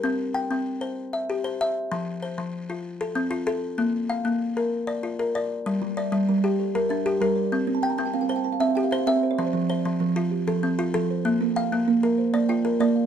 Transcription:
<<
  \new Staff \with { instrumentName = "Kalimba" } { \time 12/8 \key g \dorian \tempo 4. = 129 << { r1. | r1. | r1. | r1. |
r8. a''16 g''16 bes''16 a''16 g''16 f''16 g''16 a''16 g''16 a''16 f''16 e''16 f''16 g''16 f''16 e''16 f''16 g''16 e''16 c''16 d''16 | e''16 c''8 r1 r4 r16 | r1. | } \\ { r1. | r1. | r1. | r4 e''4. r8 a'4 e''8 g'4 d''8~ |
d''4 r1 r4 | r4 d''4. r8 g'4. f'4 c''8~ | c''4 g''4. r8 c''4 g''8 bes'4 f''8 | } >> }
  \new Staff \with { instrumentName = "Kalimba" } { \clef bass \time 12/8 \key g \dorian r1. | r1. | r1. | r8 g4 r8 g4 r8 g4 r8 g4 |
r8 c'4 r8 c'4 r8 c'4 r8 c'4 | r8 f4 r8 f4 r8 f4 r8 f4 | r8 bes4 r8 bes4 r8 bes4 r8 bes4 | }
  \new Staff \with { instrumentName = "Kalimba" } { \time 12/8 \key g \dorian << { r4 g''4. r4 e''4 c''4. | r4 c''4. r4 a'4 f'4. | r4 f''4. r4 d''4 bes'4. | r4 d''4. r4 bes'4 g'4. |
r4 g''4. r4 e''4 c''4. | r4 c''4. r4 a'4 f'4. | r4 f''4. r4 d''4 bes'4. | } \\ { c'4 r8 c'4 c''4 r8 g'4 e''4 | f4 r8 f4 f'4 r8 c'4 a'4 | bes4 r8 bes4 bes'4 r8 f'4 d''4 | g4 r8 g4 g'4 r8 d'4 bes'4 |
c'4 r8 c'4 c''4 r8 g'4 e''4 | f4 r8 f4 f'4 r8 c'4 a'4 | bes4 r8 bes4 bes'4 r8 f'4 d''4 | } >> }
>>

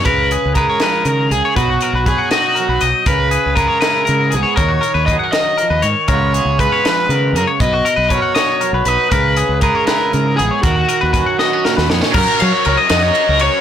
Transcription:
<<
  \new Staff \with { instrumentName = "Clean electric guitar" } { \time 6/8 \key cis \mixolydian \tempo 4. = 79 ais'8 gis'8 b'16 cis''16 b'8 ais'8 gis'16 cis''16 | b'16 fis'16 ais'16 b'16 b'16 fis''16 dis''8 ais'16 b'16 dis''8 | ais'8 gis'8 b'16 cis''16 b'8 ais'8 gis'16 cis''16 | ais'16 fis'16 ais'16 b'16 b'16 fis''16 dis''8 ais'16 b'16 cis''8 |
ais'8 gis'8 b'16 cis''16 b'8 ais'8 gis'16 cis''16 | b'16 fis'16 ais'16 b'16 b'16 fis''16 dis''8 ais'16 b'16 dis''8 | ais'8 gis'8 b'16 cis''16 b'8 ais'8 gis'16 cis''16 | ais'16 fis'16 ais'16 b'16 b'16 fis''16 dis''8 ais'16 b'16 cis''8 |
ais'8 eis''16 cis''16 ais'16 dis''8 cis''8 ais'16 cis''8 | }
  \new Staff \with { instrumentName = "Overdriven electric guitar" } { \time 6/8 \key cis \mixolydian b'4 ais'4. gis'8 | fis'4 gis'8 fis'4 r8 | b'4 ais'4. gis'8 | cis''4 dis''8 dis''4 r8 |
cis''4 b'4. ais'8 | dis''4 cis''4. b'8 | b'4 ais'8 ais'4 gis'8 | fis'2~ fis'8 r8 |
ais'8 cis''8 cis''8 dis''4 cis''8 | }
  \new Staff \with { instrumentName = "Overdriven electric guitar" } { \time 6/8 \key cis \mixolydian r2. | r2. | r2. | r2. |
r2. | r2. | r2. | r2. |
<fis cis' fis' ais'>4. <fis cis' fis' ais'>4. | }
  \new Staff \with { instrumentName = "Clean electric guitar" } { \clef bass \time 6/8 \key cis \mixolydian << { r4 gis'2 | <fis dis'>4 fis'8 dis'4 dis'8 | r4 gis'8 e'4 b8 | r4 gis'16 ais'4.~ ais'16 |
<gis b eis' b'>4 eis'2 | r4 ais'8 fis'4 dis'8 | r4 gis'8 e'4 b8 | r4 cis'8 b16 cis'8. b16 cis'16 |
r2. | } \\ { cis4 gis8 eis8 dis8 cis8 | b,4 fis4 fis4 | cis4 gis4 gis,4 | dis4 fis8 fis8 eis8 dis8 |
cis4 gis8 eis8 dis8 cis8 | b,4 fis4 fis4 | cis4 gis4 gis,4 | dis4 fis4 ais,4 |
r2. | } >> }
  \new Staff \with { instrumentName = "Fingered electric bass" } { \clef bass \time 6/8 \key cis \mixolydian cis,8. cis,8 r8. cis8 cis,16 r16 | b,,8 r16 b,,8 r4 b,,16 b,,16 r16 | cis,8. cis,8 r8. cis8 cis,16 r16 | dis,8 r16 dis,8 r4 dis,16 gis,16 r16 |
cis,8. cis,8 r8. cis8 fis,16 r16 | b,,8 r16 b,,8 r4 b,,16 b,,16 r16 | cis,8. cis,8 r8. cis8 ais,,16 r16 | dis,8 r16 dis,8 r4 dis,16 eis,16 r16 |
fis,16 r16 fis16 r16 cis,16 r16 eis,8 r16 cis,8 r16 | }
  \new DrumStaff \with { instrumentName = "Drums" } \drummode { \time 6/8 <hh bd>8 hh8 <hh bd>8 <hh sn>8 hh8 hh8 | <hh bd>8 hh8 <hh bd>8 <hh sn>8 hh8 hh8 | <hh bd>8 hh8 <hh bd>8 <hh sn>8 hh8 hh8 | <hh bd>8 hh8 <hh bd>8 <hh sn>8 hh8 hh8 |
<hh bd>8 hh8 <hh bd>8 <hh sn>8 hh8 hh8 | <hh bd>8 hh8 <hh bd>8 <hh sn>8 hh8 hh8 | <hh bd>8 hh8 <hh bd>8 <hh sn>8 hh8 hh8 | <hh bd>8 hh8 <hh bd>8 sn8 sn16 sn16 sn16 sn16 |
<cymc bd>8 cymr8 cymr8 <cymr sn>8 cymr8 cymr8 | }
>>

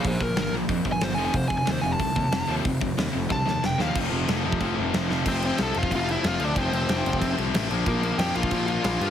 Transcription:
<<
  \new Staff \with { instrumentName = "Lead electric guitar" } { \time 4/4 \key f \mixolydian \tempo 4 = 184 <aes' c''>8 bes'4 r8 \tuplet 3/2 { r4 aes''8 c''8 aes''8 aes''8 } | \tuplet 3/2 { c''8 aes''8 aes''8 c''8 aes''8 a''8~ } a''4. r8 | r2 a''4 g''8 f''8 | r1 |
\key bes \lydian <c' c''>8 <c' c''>8 <a' a''>8 <f' f''>8 <f' f''>8 <e' e''>8 <f' f''>8 <d' d''>8 | <c' c''>8 <c' c''>2 r4. | <bes bes'>8 <bes bes'>8 <g' g''>8 <f' f''>4 <f' f''>4. | }
  \new Staff \with { instrumentName = "Distorted electric guitar" } { \clef bass \time 4/4 \key f \mixolydian <bes, f>8 <bes, f>8 <bes, f>8 <bes, f>8 <bes, f>8 <bes, f>8 <bes, f>8 <f, c f>8 | <f, c>8 <f, c>8 <f, c>8 <f, c>8 <f, c>8 <f, c>8 <f, c>8 <f, c f>8 | <f, c>8 <f, c>8 <f, c>8 <f, c>8 <f, c>8 <f, c>8 <f, c>8 <f, c f>8 | <f, c f>8 <f, c f>8 <f, c f>8 <f, c f>8 <f, c f>8 <f, c f>8 <f, c f>8 <f, c f>8 |
\key bes \lydian <f, c f>2.~ <f, c f>8 <f, c f>8 | <f, c f>2.~ <f, c f>8 <bes, f bes>8~ | <bes, f bes>2. <bes, f bes>8 <bes, f bes>8 | }
  \new Staff \with { instrumentName = "Distorted electric guitar" } { \clef bass \time 4/4 \key f \mixolydian <bes, f>8 <bes, f>8 <bes, f>8 <bes, f>8 <bes, f>8 <bes, f>8 <bes, f>8 <f, c f>8 | <f, c>8 <f, c>8 <f, c>8 <f, c>8 <f, c>8 <f, c>8 <f, c>8 <f, c f>8 | <f, c>8 <f, c>8 <f, c>8 <f, c>8 <f, c>8 <f, c>8 <f, c>8 <f, c f>8 | <f, c f>8 <f, c f>8 <f, c f>8 <f, c f>8 <f, c f>8 <f, c f>8 <f, c f>8 <f, c f>8 |
\key bes \lydian r1 | r1 | r1 | }
  \new Staff \with { instrumentName = "Picked electric bass" } { \clef bass \time 4/4 \key f \mixolydian bes,,8 bes,,8 g,,8 bes,,8 f,8 g,,8 g,,8 f,,8 | f,,8 f,,8 ees,8 f,,8 c,8 ees,8 f,,8 ees,8 | f,,8 f,,8 ees,8 f,,8 c,8 ees,8 f,,8 ees,8 | f,,8 f,,8 f,,8 f,,8 f,,8 f,,8 f,,8 f,,8 |
\key bes \lydian f,,4 c,8 f,,8 f,,4 f,,8 d,8 | f,,8 f,,8 f,,8 f,,8 f,,8 c,8 a,,8 bes,,8 | bes,,4 f,8 bes,,8 bes,,4 bes,,8 g,8 | }
  \new DrumStaff \with { instrumentName = "Drums" } \drummode { \time 4/4 <hho bd>8 bd8 <hho sn>4 <hho bd>8 bd8 <hho sn>4 | <hho bd>8 bd8 <hho sn>4 <hho bd>8 bd8 <hho sn>4 | <hho bd>8 bd8 <hho sn>4 <bd sn>8 sn8 sn8 sn8 | <cymc bd>4 <cymc sn>8. bd16 <cymc bd>4 <cymc sn>8 sn8 |
<cymc bd>8 cymc8 <cymc sn>8 cymc16 bd16 <cymc bd>8 cymc8 <cymc sn>8 cymc8 | <cymc bd>8 cymc8 <cymc sn>8 cymc16 bd16 <cymc bd>8 cymc8 <cymc sn>8 cymc8 | <cymc bd>8 cymc8 <cymc sn>8 cymc16 bd16 <cymc bd>8 cymc8 <cymc sn>8 cymc8 | }
>>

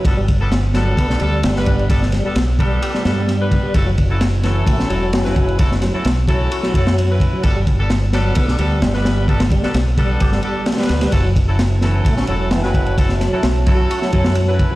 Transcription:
<<
  \new Staff \with { instrumentName = "Analog synth pad" } { \time 4/4 \key fis \phrygian \tempo 4 = 130 r1 | r1 | r1 | r1 |
r1 | r1 | <fis' cis'' e'' a''>1~ | <fis' cis'' e'' a''>1 | }
  \new Staff \with { instrumentName = "Horn section" } { \time 4/4 \key fis \phrygian <g b d' a'>16 r8 <g b d' a'>16 r8 <g b d' a'>4 <g b d' a'>8 r16 <g b d' b'>8. | <g b d' a'>16 r8 <g b d' a'>16 r8 <g b d' a'>4 <g b d' a'>8 r16 <g b d' b'>8. | <fis cis' e' a'>16 r8 <fis cis' e' a'>16 r8 <fis cis' e' a'>4 <fis cis' e' a'>8 r16 <fis cis' e' b'>8. | <fis cis' e' a'>16 r8 <fis cis' e' a'>16 r8 <fis cis' e' a'>4 <fis cis' e' a'>8 r16 <fis cis' e' b'>8. |
<g b d' a'>16 r8 <g b d' a'>16 r8 <g b d' a'>4 <g b d' a'>8 r16 <g b d' b'>8. | <g b d' a'>16 r8 <g b d' a'>16 r8 <g b d' a'>4 <g b d' a'>8 r16 <g b d' b'>8. | <fis cis' e' a'>16 r8 <fis cis' e' a'>16 r8 <fis cis' e' a'>4 <fis cis' e' a'>8 r16 <fis cis' e' b'>8. | <fis cis' e' a'>16 r8 <fis cis' e' a'>16 r8 <fis cis' e' a'>4 <fis cis' e' a'>8 r16 <fis cis' e' b'>8. | }
  \new Staff \with { instrumentName = "Tonewheel organ" } { \clef bass \time 4/4 \key fis \phrygian r16 g16 r4 fis8 b16 d'16 g8 g4 | r8 g16 g16 r8 g8 g'16 g16 g4 r16 g16 | r16 fis16 r4 e8 a16 cis'16 fis8 fis4 | r8 fis16 fis16 r8 fis8 fis'16 fis16 fis4 r16 fis16 |
r16 g16 r4 fis8 b16 d'16 g8 g4 | r8 g16 g16 r8 g8 g'16 g16 g4 r16 g16 | r16 fis16 r4 e8 a16 cis'16 fis8 e16 r8. | r8 fis16 fis16 r8 fis8 fis'16 fis16 fis4 r16 fis16 | }
  \new Staff \with { instrumentName = "Fingered electric bass" } { \clef bass \time 4/4 \key fis \phrygian g,,2 b,,8 d,8 g,,4~ | g,,8 r8 b,,4 r8 g,4 r8 | fis,,2 a,,8 e,,8 fis,,4~ | fis,,8 r8 b,,4 r8 fis,4 r8 |
g,,2 b,,8 d,8 g,,4~ | g,,8 r8 b,,4 g,,8 r4 d,8 | fis,,2 a,,8 e,,8 fis,,4~ | fis,,8 r8 b,,4 r8 fis,4 r8 | }
  \new DrumStaff \with { instrumentName = "Drums" } \drummode { \time 4/4 <bd cymr>8 <bd cymr>8 <cymr sn>8 <cymr sn>8 <bd cymr>16 sn16 cymr8 <cymr sn>16 sn16 <bd cymr>16 cymr16 | <bd cymr>16 sn16 <cymr sn>8 <cymr sn>8 <bd cymr>8 cymr16 sn16 <cymr sn>8 <cymr sn>8 <bd cymr>8 | <bd cymr>8 <bd cymr>8 <cymr sn>8 <cymr sn>8 <bd cymr>16 sn16 cymr8 <cymr sn>16 sn16 <bd cymr>16 cymr16 | <bd cymr>16 sn16 <cymr sn>8 <cymr sn>8 <bd cymr>8 cymr16 sn16 <bd cymr>16 sn16 cymr8 <bd cymr>8 |
<bd cymr>8 <bd cymr>8 <cymr sn>8 <cymr sn>8 <bd cymr>16 sn16 cymr8 <cymr sn>16 sn16 <cymr sn>8 | <bd cymr>16 <cymr sn>16 <bd cymr>16 sn16 <cymr sn>8 <bd cymr>8 <bd cymr>16 sn16 cymr8 <cymr sn>32 <cymr sn>32 <cymr sn>32 <cymr sn>32 <cymr sn>16 <cymr sn>16 | <bd cymr>8 <bd cymr>8 <cymr sn>8 <cymr sn>8 <bd cymr>16 sn16 cymr8 <cymr sn>16 sn16 <bd cymr>16 cymr16 | <bd cymr>16 sn16 <cymr sn>8 <cymr sn>8 <bd cymr>8 cymr16 sn16 <bd cymr>16 sn16 cymr8 <bd cymr>8 | }
>>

